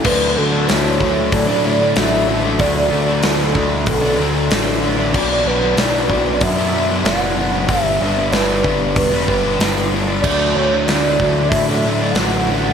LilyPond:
<<
  \new Staff \with { instrumentName = "Soft synth lead" } { \time 4/4 \key d \major \tempo 4 = 94 b'8 a'8 cis''4 d''4 e''4 | d''4 a'4 a'4. r8 | d''8 b'8 d''4 e''4 fis''4 | e''4 b'4 b'4. r8 |
d''8 cis''8 d''4 e''4 fis''4 | }
  \new Staff \with { instrumentName = "Overdriven electric guitar" } { \time 4/4 \key d \major <d fis a d'>8 <d fis a d'>16 <fis a d'>16 <d fis a d'>8 <d fis a d'>8. <fis a d'>16 <d fis a d'>16 <fis a d'>16 <d fis a d'>8 <d fis a d'>16 <fis a d'>16 | <d fis a d'>8 <d fis a d'>16 <fis a d'>16 <d fis a d'>8 <d fis a d'>8. <fis a d'>16 <d fis a d'>16 <fis a d'>16 <d fis a d'>8 <d fis a d'>16 <fis a d'>16 | <b, fis b d'>8 <b, fis b d'>16 <fis b d'>16 <b, fis b d'>8 <b, fis b d'>8. <fis b d'>16 <b, fis b d'>16 <fis b d'>16 <b, fis b d'>8 <b, fis b d'>16 <fis b d'>16 | <g, d g b d'>8 <d g b d'>16 <g b d'>16 <g, d g b d'>8 <d g b d'>8. <g b d'>16 <d g b d'>16 <g b d'>16 <g, d g b d'>8 <d g b d'>16 <g b d'>16 |
<d fis a d'>8 <d fis a d'>16 <fis a d'>16 <d fis a d'>8 <d fis a d'>8. <fis a d'>16 <d fis a d'>16 <fis a d'>16 <d fis a d'>8 <d fis a d'>16 <fis a d'>16 | }
  \new Staff \with { instrumentName = "Picked electric bass" } { \clef bass \time 4/4 \key d \major d,8 d,8 d,8 d,8 a,4 a,,4 | d,8 d,8 d,8 d,8 b,,8 d,8 a,,4 | b,,8 b,,8 b,,8 b,,8 fis,4 fis,,4 | g,,8 g,,8 g,,8 g,,8 e,,8 g,,8 g,,4 |
d,8 d,8 d,8 d,8 a,4 a,,4 | }
  \new DrumStaff \with { instrumentName = "Drums" } \drummode { \time 4/4 <cymc bd>4 <hho sn>8 bd8 <hho bd>4 <hho sn>4 | <hho bd>4 <hho sn>8 bd8 <hho bd>4 <hho sn>4 | <cymc bd>4 <hho sn>8 bd8 <hho bd>4 <hho sn>4 | <hho bd>4 <hho sn>8 bd8 <hho bd>8 bd8 <hho sn>4 |
<cymc bd>4 <hho sn>8 bd8 <hho bd>4 <hho sn>4 | }
>>